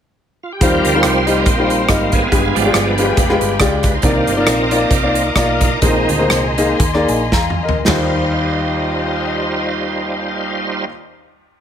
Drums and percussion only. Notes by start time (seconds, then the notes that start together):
0.61 kick, closed hi-hat
0.85 closed hi-hat
1.03 cross-stick, closed hi-hat
1.27 closed hi-hat
1.46 kick, closed hi-hat
1.70 closed hi-hat
1.88 kick, cross-stick, closed hi-hat
2.12 kick, closed hi-hat
2.32 kick, closed hi-hat
2.56 closed hi-hat
2.74 cross-stick, closed hi-hat
2.98 closed hi-hat
3.17 kick, closed hi-hat
3.29 cross-stick
3.41 closed hi-hat
3.60 kick, cross-stick, closed hi-hat
3.83 kick, cross-stick, closed hi-hat
4.02 kick, closed hi-hat
4.27 closed hi-hat
4.47 cross-stick, closed hi-hat
4.71 closed hi-hat
4.91 kick, closed hi-hat
5.15 closed hi-hat
5.36 kick, cross-stick, closed hi-hat
5.61 kick, cross-stick, closed hi-hat
5.82 kick, closed hi-hat
6.09 closed hi-hat
6.30 cross-stick, closed hi-hat
6.58 closed hi-hat
6.80 kick, closed hi-hat
6.94 cross-stick
7.08 closed hi-hat
7.32 kick, snare
7.50 mid tom
7.69 floor tom
7.88 snare, floor tom, ride bell